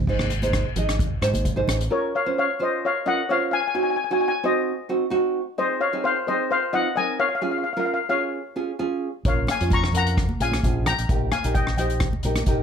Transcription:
0.07 G#1 D#4 G#4 C5, kick, crash
0.19 cross-stick, high conga
0.30 closed hi-hat
0.42 D#4 G#4 C5, closed hi-hat, high conga
0.53 kick, cross-stick, closed hi-hat
0.76 G#1 D#4 G#4 D#5, closed hi-hat, low conga
0.89 cross-stick, closed hi-hat
0.99 kick, closed hi-hat
1.22 G#2 D#4 G#4 C5, cross-stick, closed hi-hat
1.34 G#1, closed hi-hat, high conga
1.45 kick, closed hi-hat
1.56 D#4 G#4 C5
1.68 A1, cross-stick, closed hi-hat, low conga
1.81 closed hi-hat
1.90 C#4 F4 A#4 C#5
2.15 C#5 F5
2.26 C#4 F4 C5
2.38 C#5 F5
2.59 C#4 F4 C5 D#5
2.85 C#5 F5
3.06 C#4 F4 A#4 D#5 F#5
3.29 C#4 F4 C5 C#5 F5
3.51 F5 G#5
3.61 G#5
3.68 G#5
3.74 C4 D#4 F#4 G#5
3.83 G#5
3.90 G#5
3.96 G#5
4.04 G#5
4.10 C4 D#4 F#4 G#5
4.21 G#5
4.28 G#5
4.43 C4 D#4 F#4 C5 D#5
4.89 C4 D#4 F#4
5.10 C4 D#4 F#4
5.58 C4 D#4 G#4 C5 D#5
5.81 C#5 F5
5.93 C4 D#4 G#4
6.04 C5 F5
6.27 C4 D#4 G#4 C5 D#5
6.51 C5 F5
6.73 C4 D#4 F4 D#5 F#5
6.96 C4 D#4 A#4 D#5 G#5
7.20 C#5 F5
7.29 F5
7.35 F5
7.41 C#4 F4 G#4 F5
7.51 F5
7.58 F5
7.64 F5
7.73 C#4 F4 F5
7.77 A#4 F5
7.86 F5
7.94 F5
8.09 C#4 F4 G#4 C#5 F5
8.56 C#4 F4 G#4
8.79 C#4 F4 G#4
9.25 A#1 C#4 F4 A#4 C#5 F5, kick, closed hi-hat
9.47 F5, cross-stick, closed hi-hat, high conga
9.51 G#5
9.61 F2 C#4 F4 C#5, closed hi-hat
9.70 A#5 C#6, kick, closed hi-hat, high conga, low conga
9.84 cross-stick
9.93 C#4 F4 A#4 F#5, closed hi-hat, low conga
9.97 A#5
10.07 closed hi-hat
10.17 kick, cross-stick, closed hi-hat
10.29 high conga
10.40 A#1 C#4 F4 G#4 F5 G#5, closed hi-hat
10.52 cross-stick, closed hi-hat, high conga
10.63 A#1 C#4 F4 G#4, kick, closed hi-hat
10.86 G5 A#5, cross-stick, closed hi-hat, low conga
10.98 A#1, closed hi-hat
11.09 A#1 D#4 G4 A#4, kick, closed hi-hat
11.32 F5 G#5, cross-stick, closed hi-hat, high conga
11.44 A#1 D#4 G4 A#4, closed hi-hat
11.55 D#5 G5, kick, closed hi-hat, high conga, low conga
11.67 cross-stick
11.77 D#4 G4 C5 D#5 G5, closed hi-hat, low conga
11.90 closed hi-hat
12.00 kick, cross-stick, closed hi-hat
12.13 high conga
12.23 A#1 D#4 G4 A#4, closed hi-hat
12.35 cross-stick, closed hi-hat, high conga
12.46 A#1 D#4 G4 A#4, kick, closed hi-hat

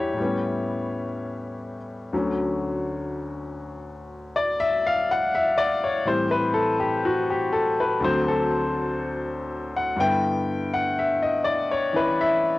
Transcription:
Already playing: E2 E3 G3 D4 E4 G4 B4 C#5 E5
0.14 A2 G3
0.21 B3 C#4
2.12 D2 D3 F#3 C#4
4.36 D5
4.60 E5
4.87 F5
5.11 F#5
5.35 E5
5.58 D5
5.84 C#5
6.05 A2 E3 G3 C4 C5
6.31 B4
6.54 A4
6.80 G4
7.05 F#4
7.30 G4
7.52 A4
7.80 B4
8.00 D2 D3 F#3
8.04 C4 C5
8.28 A4
9.77 F#5
9.96 G2 D3 B3 G5
10.01 E4
10.74 F#5
10.99 E5
11.23 D#5
11.44 D5
11.71 C#5
11.93 E3 C#4 E4 B4
12.21 E5

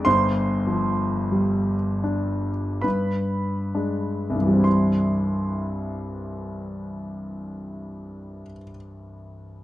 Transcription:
0.05 G1 G2 C5 C6
0.67 F3
1.32 G3
2.04 D4
2.81 G2 B4 B5
3.75 G#3 D4
4.30 C2
4.36 G2
4.41 E3
4.47 G3
4.53 C4
4.60 E4
4.64 C6

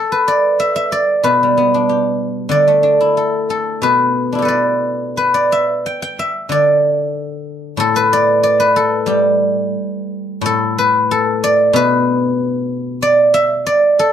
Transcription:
Already playing: A4
0.12 B4
0.28 D5
0.60 E5
0.76 E5
0.92 D5
1.23 B2 B4
1.43 G3
1.57 B3
1.74 D4
1.89 G4
2.49 D3 D5
2.68 A3
2.83 D4
3.01 E4
3.17 A4
3.50 A4
3.82 B2 B4
4.32 D4 E4
4.39 G4 A4
4.45 B4 D5
5.17 B4
5.34 D5
5.52 E5
5.86 G5
6.02 G5
6.19 E5
6.49 D3 D5
7.77 A2 A4
7.96 B4
8.13 D5
8.43 D5
8.60 B4
8.76 A4
9.06 G3 G4
10.41 A2
10.46 A4
10.78 B4
11.11 A4
11.44 D5
11.73 B2 B4
13.02 D5
13.34 E5
13.66 D5
13.99 A4

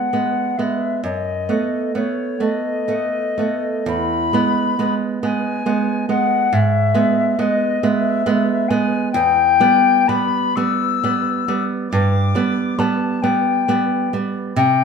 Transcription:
Already playing: B3 F#5
0.13 G#3 B3
0.57 G#3 B3 E5
1.03 F#2 D#5
1.49 A3 B3
1.95 A3 B3 C#5
2.40 A3 B3 D#5
2.88 A3 B3
3.38 A3 B3
3.86 E2 B5
4.33 G#3 B3
4.79 G#3 B3
5.23 G#3 B3 G#5
5.66 G#3 B3
6.09 G#3 B3 F#5
6.53 G#2 E5
6.94 G#3 B3
7.39 G#3 B3 D#5
7.83 G#3 B3 E5
8.26 G#3 B3
8.69 G#3 B3 G#5
9.12 E2 G5
9.60 G3 B3
10.08 G3 B3 B5
10.56 G3 B3 E6
11.03 G3 B3
11.48 G3 B3
11.90 G2 D6
12.35 G3 B3
12.79 G3 B3 A5
13.22 G3 B3 G5
13.68 G3 B3
14.13 G3 B3
14.56 C3 G5

